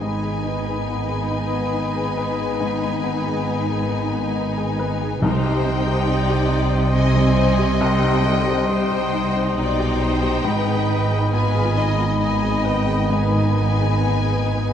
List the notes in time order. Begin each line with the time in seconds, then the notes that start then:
0.01 G#1 G#2 D#3 B3 D#4 B4 D#5 G#5 B5
0.22 G#4
0.44 D#4
0.66 G#4
0.87 B3
1.09 G#4
1.30 D#4
1.52 B3
1.73 D#4
1.95 G#4
2.18 B4
2.39 G#4
2.61 G#2
2.82 D#4
3.04 B3
3.26 G#4
3.49 B3
3.69 G#4
3.91 D#4
4.13 B3
4.36 D#4
4.57 G#4
4.79 B4
5.01 G#4
5.22 C2 C3 G3 D#4 C5 D#5 G5 C6
5.44 G4
5.65 D#4
5.87 G4
6.08 C4 D5
6.30 G4
6.50 D#4
6.72 C4
6.93 C4 D#4 D#5 G#5
7.16 G3
7.36 C5 D#5
7.59 G4
7.81 C2 C4 G5
8.02 D#4
8.24 D3 C4
8.48 G4
8.68 C4 D#4 C5 G5
8.91 G4
9.14 D#4
9.36 C4
9.56 B1 B2 D#4 D5 G5
9.80 G4
10.00 C5
10.23 G4
10.44 G#1 G#2 D#3 B3 B4 D#5 B5
10.67 G#4
10.89 D#4
11.11 G#4
11.31 B3 F4 B4 G#5
11.55 G#4
11.76 D#4 D#5
11.98 B3
12.19 D#4 D#5 G#5
12.42 G#4
12.64 B4 G5
12.86 G#4
13.09 G#2 D#4 B4 G#5
13.33 D#4
13.56 B3
13.79 G#4
14.00 B3
14.23 G#4
14.45 D#4
14.68 B3